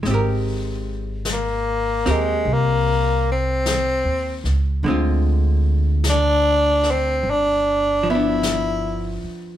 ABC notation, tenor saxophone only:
X:1
M:4/4
L:1/8
Q:"Swing" 1/4=50
K:Ab
V:1 name="Tenor saxophone"
z2 B, A, B, C2 z | z2 =D C D _F2 z |]